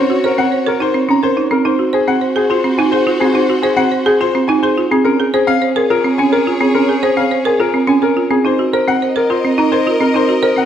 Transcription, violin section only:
0.00 1.47 F#4 medium
0.00 1.47 C#5 medium
1.65 4.86 F#4 medium
1.65 4.86 C5 medium
5.05 8.27 G#4 medium
5.05 8.27 C#5 medium
8.45 10.65 A#4 medium
8.45 10.65 D#5 medium

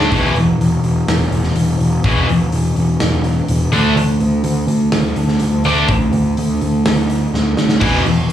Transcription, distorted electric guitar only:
0.00 0.12 D3 medium
0.00 0.12 A3 loud
0.00 0.12 D4 medium
0.12 0.32 E2 medium
0.12 0.31 B2 loud
0.12 0.32 E3 loud
2.06 2.24 E2 medium
2.06 2.24 B2 loud
2.06 2.25 E3 loud
3.72 3.92 D3 medium
3.72 3.92 A3 loud
3.72 3.92 D4 loud
5.65 5.85 D3 medium
5.65 5.85 A3 loud
5.65 5.85 D4 loud
7.81 8.01 E2 medium
7.81 8.01 B2 medium
7.81 8.01 E3 loud

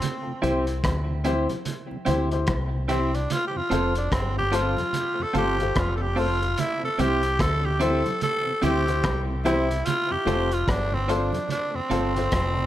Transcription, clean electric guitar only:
0.42 0.64 C4 medium
0.42 0.64 E4 loud
0.42 0.65 G4 medium
0.42 0.65 C5 medium
1.24 1.46 C4 medium
1.24 1.47 E4 medium
1.24 1.47 G4 medium
1.24 1.47 C5 medium
2.05 2.28 C4 medium
2.05 2.28 E4 loud
2.05 2.28 G4 medium
2.05 2.29 C5 medium
2.88 3.10 C4 medium
2.88 3.11 E4 medium
2.88 3.11 G4 medium
2.88 3.11 C5 medium
3.70 3.92 C4 medium
3.70 3.92 F4 medium
3.70 3.93 A4 medium
3.70 3.93 C5 medium
4.52 4.74 C4 medium
4.52 4.74 F4 medium
4.52 4.74 A4 medium
4.52 4.75 C5 medium
5.33 5.56 C4 medium
5.33 5.56 F4 medium
5.33 5.56 A4 medium
5.33 5.57 C5 medium
6.16 6.38 C4 medium
6.16 6.38 F4 medium
6.16 6.39 A4 medium
6.16 6.39 C5 medium
6.98 7.20 C4 medium
6.98 7.21 E4 medium
6.98 7.21 G4 medium
6.98 7.21 C5 loud
7.80 8.02 C4 medium
7.80 8.02 E4 medium
7.80 8.03 G4 medium
7.80 8.03 C5 loud
8.62 8.84 C4 medium
8.62 8.85 E4 medium
8.62 8.85 G4 loud
8.62 8.85 C5 medium
9.45 9.67 C4 medium
9.45 9.67 E4 medium
9.45 9.67 G4 medium
9.45 9.68 C5 loud
10.27 10.49 C4 medium
10.27 10.49 F4 medium
10.27 10.49 A4 loud
10.27 10.49 C5 loud
11.08 11.30 C4 medium
11.08 11.31 F4 medium
11.08 11.31 A4 medium
11.08 11.31 C5 medium
11.90 12.12 C4 medium
11.90 12.13 F4 medium
11.90 12.13 A4 medium
11.90 12.13 C5 medium

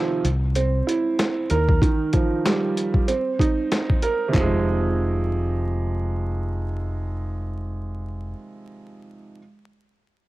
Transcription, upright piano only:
0.00 0.24 C3 medium
0.00 0.24 D#3 medium
0.00 0.24 F3 medium
0.56 1.50 C4 medium
0.87 1.50 E4 medium
1.50 3.08 A#4 medium
1.82 3.08 D#3 medium
2.13 3.08 F3 medium
2.45 3.08 G3 medium
3.08 4.34 C4 medium
3.40 4.34 D#4 medium
4.03 4.34 A#4 medium
4.28 8.30 C3 medium
4.32 8.32 D#3 medium
4.36 8.34 F3 medium
4.40 8.36 G#3 medium

